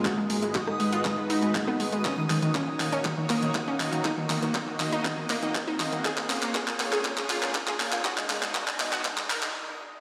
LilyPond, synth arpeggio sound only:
\new Staff \with { instrumentName = "Synth arpeggio sound" } { \clef bass \time 4/4 \key ees \minor \tempo 4 = 120 ges'16 aes16 aes16 aes16 ges'16 aes16 aes16 f'16 aes16 aes16 ees'16 aes16 aes16 ces'16 aes16 aes16 | des'16 ees16 ees16 ees16 des'16 ees16 ees16 des'16 ees16 ees16 bes16 ees16 ees16 des'16 ees16 ees16 | ees'16 ees16 ees16 ees16 ees'16 ees16 ees16 ees'16 ees16 ees16 bes16 ees16 ees16 ees'16 ees16 ees16 | aes'16 bes16 bes16 bes16 aes'16 bes16 bes16 aes'16 bes16 bes16 f'16 bes16 bes16 aes'16 bes16 bes16 |
ges'16 aes16 aes16 aes16 ges'16 aes16 aes16 ges'16 aes16 aes16 bes'16 aes16 r4 | }